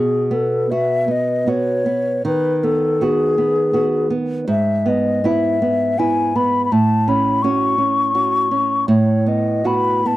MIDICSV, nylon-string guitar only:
0, 0, Header, 1, 2, 480
1, 0, Start_track
1, 0, Tempo, 766284
1, 1408, Time_signature, 3, 2, 24, 8
1, 1883, Tempo, 745342
1, 3803, Tempo, 725514
1, 5723, Tempo, 779221
1, 6511, End_track
2, 0, Start_track
2, 0, Title_t, "Nylon-string guitar"
2, 0, Program_c, 0, 24
2, 0, Note_on_c, 0, 47, 42
2, 193, Note_on_c, 0, 59, 36
2, 413, Note_off_c, 0, 59, 0
2, 447, Note_on_c, 0, 59, 33
2, 449, Note_on_c, 0, 66, 35
2, 663, Note_off_c, 0, 59, 0
2, 664, Note_off_c, 0, 66, 0
2, 675, Note_on_c, 0, 59, 31
2, 897, Note_off_c, 0, 59, 0
2, 918, Note_on_c, 0, 59, 33
2, 924, Note_on_c, 0, 66, 37
2, 1138, Note_off_c, 0, 59, 0
2, 1141, Note_off_c, 0, 66, 0
2, 1164, Note_on_c, 0, 59, 36
2, 1380, Note_off_c, 0, 47, 0
2, 1382, Note_off_c, 0, 59, 0
2, 1408, Note_on_c, 0, 51, 47
2, 1649, Note_on_c, 0, 59, 35
2, 1860, Note_off_c, 0, 59, 0
2, 1886, Note_on_c, 0, 59, 38
2, 1891, Note_on_c, 0, 66, 36
2, 2098, Note_off_c, 0, 59, 0
2, 2099, Note_off_c, 0, 66, 0
2, 2124, Note_on_c, 0, 59, 34
2, 2333, Note_off_c, 0, 59, 0
2, 2351, Note_on_c, 0, 59, 35
2, 2356, Note_on_c, 0, 66, 40
2, 2566, Note_off_c, 0, 59, 0
2, 2569, Note_off_c, 0, 66, 0
2, 2589, Note_on_c, 0, 59, 40
2, 2807, Note_off_c, 0, 51, 0
2, 2808, Note_off_c, 0, 59, 0
2, 2829, Note_on_c, 0, 44, 53
2, 3075, Note_on_c, 0, 59, 40
2, 3296, Note_off_c, 0, 59, 0
2, 3322, Note_on_c, 0, 59, 40
2, 3329, Note_on_c, 0, 64, 42
2, 3539, Note_off_c, 0, 59, 0
2, 3543, Note_off_c, 0, 64, 0
2, 3565, Note_on_c, 0, 59, 40
2, 3779, Note_off_c, 0, 59, 0
2, 3806, Note_on_c, 0, 59, 32
2, 3807, Note_on_c, 0, 64, 39
2, 4024, Note_off_c, 0, 59, 0
2, 4024, Note_off_c, 0, 64, 0
2, 4046, Note_on_c, 0, 59, 39
2, 4259, Note_off_c, 0, 44, 0
2, 4263, Note_off_c, 0, 59, 0
2, 4287, Note_on_c, 0, 45, 46
2, 4524, Note_on_c, 0, 61, 43
2, 4736, Note_off_c, 0, 61, 0
2, 4764, Note_on_c, 0, 61, 39
2, 4767, Note_on_c, 0, 66, 41
2, 4974, Note_off_c, 0, 61, 0
2, 4975, Note_off_c, 0, 66, 0
2, 4989, Note_on_c, 0, 61, 33
2, 5206, Note_off_c, 0, 61, 0
2, 5231, Note_on_c, 0, 61, 34
2, 5233, Note_on_c, 0, 66, 40
2, 5450, Note_off_c, 0, 61, 0
2, 5450, Note_off_c, 0, 66, 0
2, 5474, Note_on_c, 0, 61, 39
2, 5694, Note_off_c, 0, 45, 0
2, 5696, Note_off_c, 0, 61, 0
2, 5717, Note_on_c, 0, 45, 53
2, 5953, Note_on_c, 0, 59, 37
2, 6169, Note_off_c, 0, 59, 0
2, 6188, Note_on_c, 0, 59, 34
2, 6192, Note_on_c, 0, 66, 39
2, 6412, Note_off_c, 0, 59, 0
2, 6414, Note_off_c, 0, 66, 0
2, 6441, Note_on_c, 0, 59, 36
2, 6511, Note_off_c, 0, 45, 0
2, 6511, Note_off_c, 0, 59, 0
2, 6511, End_track
0, 0, End_of_file